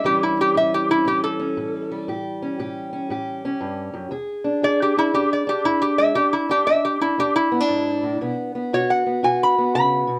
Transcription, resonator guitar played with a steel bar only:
0.06 0.21 G4 medium
0.23 0.39 E4 medium
0.41 0.56 G4 medium
0.57 0.73 E5 loud
0.74 0.90 G4 medium
0.91 1.07 E4 loud
1.08 1.23 G4 medium
1.24 2.22 A4 medium
4.64 4.80 D5 medium
4.82 4.98 G4 medium
4.99 5.14 E4 loud
5.15 5.31 G4 loud
5.33 5.49 D5 medium
5.49 5.65 G4 medium
5.65 5.82 E4 loud
5.82 5.99 G4 medium
5.98 6.15 E5 medium
6.15 6.32 G4 loud
6.33 6.50 E4 medium
6.51 6.67 G4 loud
6.67 6.84 E5 loud
6.85 7.01 G4 medium
7.01 7.18 E4 medium
7.20 7.36 G4 medium
7.36 8.35 E4 loud
8.74 8.90 C#5 medium
8.90 9.23 F#5 medium
9.24 9.40 G#5 medium
9.43 9.74 B5 loud
9.75 10.19 B5 loud

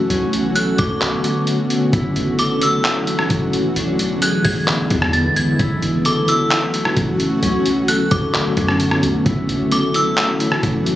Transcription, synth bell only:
0.56 0.77 F#6 medium
0.79 1.43 D6 medium
2.39 2.61 D6 medium
2.63 2.84 E6 medium
4.22 4.44 F#6 medium
4.44 4.66 G#6 medium
5.13 5.35 A6 medium
5.36 5.58 G#6 medium
6.06 6.27 D6 medium
6.29 6.50 E6 medium
7.88 8.10 F#6 medium
8.11 8.76 D6 medium
9.72 9.94 D6 medium
9.96 10.17 E6 medium

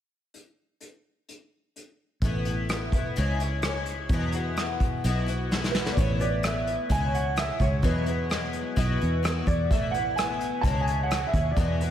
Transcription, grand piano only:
5.71 5.90 B4 medium
5.92 5.98 D5 medium
5.98 6.22 C#5 medium
6.21 6.42 D5 medium
6.46 6.93 E5 medium
6.91 7.15 G#5 medium
7.15 7.38 F#5 medium
7.38 7.62 E5 medium
7.61 7.85 C#5 medium
7.84 9.20 B4 medium
9.47 9.71 D5 medium
9.70 9.95 E5 medium
9.91 10.14 F#5 medium
10.16 10.65 G#5 medium
10.61 10.87 A5 loud
10.81 11.08 G#5 medium
11.03 11.28 F#5 medium
11.27 11.54 E5 medium
11.51 11.91 D5 medium

